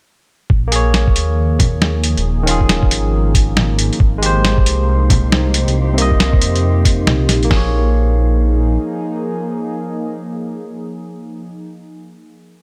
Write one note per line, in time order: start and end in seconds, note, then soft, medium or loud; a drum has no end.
0.50 1.17 A#1 medium
0.50 7.50 F3 medium
0.50 kick loud
0.57 7.51 A#3 medium
0.68 2.22 A#3 medium
0.72 2.24 G#4 medium
0.72 closed hi-hat medium
0.76 2.26 C#5 medium
0.94 7.51 D#4 medium
0.94 4.01 G#4 medium
0.94 snare loud
0.94 closed hi-hat soft
1.07 kick loud
1.16 2.15 D#2 medium
1.16 closed hi-hat medium
1.59 kick medium
1.59 closed hi-hat medium
1.59 low bongo medium
1.82 snare loud
2.04 closed hi-hat medium
2.17 2.93 D#1 medium
2.17 closed hi-hat soft
2.43 3.98 D#3 medium
2.43 3.99 C#4 medium
2.47 4.00 F4 medium
2.47 4.02 G#4 loud
2.47 closed hi-hat medium
2.61 kick medium
2.69 snare loud
2.69 closed hi-hat soft
2.83 kick loud
2.91 3.91 G#1 medium
2.91 closed hi-hat medium
3.35 kick loud
3.35 closed hi-hat medium
3.57 snare loud
3.57 low bongo soft
3.79 closed hi-hat medium
3.93 closed hi-hat soft
3.99 4.68 G#1 medium
3.99 7.52 C4 medium
3.99 7.52 C5 medium
3.99 kick loud
4.18 5.73 G#3 medium
4.18 5.75 G4 medium
4.23 5.77 C5 loud
4.23 closed hi-hat medium
4.38 7.51 G4 medium
4.45 snare loud
4.45 closed hi-hat soft
4.58 kick loud
4.66 5.66 C2 medium
4.66 closed hi-hat medium
5.10 kick loud
5.10 closed hi-hat medium
5.10 low bongo medium
5.32 snare loud
5.54 closed hi-hat medium
5.68 6.43 C2 medium
5.68 closed hi-hat soft
5.94 7.48 C3 medium
5.94 7.44 A#3 medium
5.98 7.52 D#5 loud
5.98 closed hi-hat medium
6.11 kick medium
6.20 snare loud
6.20 closed hi-hat soft
6.33 kick loud
6.41 7.06 F2 medium
6.41 closed hi-hat medium
6.56 closed hi-hat soft
6.85 kick loud
6.85 closed hi-hat medium
7.07 7.28 C2 medium
7.07 snare loud
7.07 low bongo soft
7.29 7.50 A#1 medium
7.29 snare medium
7.29 closed hi-hat medium
7.43 11.41 A#3 medium
7.43 closed hi-hat soft
7.51 8.78 A#1 medium
7.51 11.47 F3 medium
7.51 11.47 G#4 medium
7.51 kick loud
7.51 snare loud
7.51 open hi-hat medium
7.57 11.56 A#3 medium
7.57 11.53 C#5 medium
7.67 11.63 D#4 medium
7.67 11.67 G#4 medium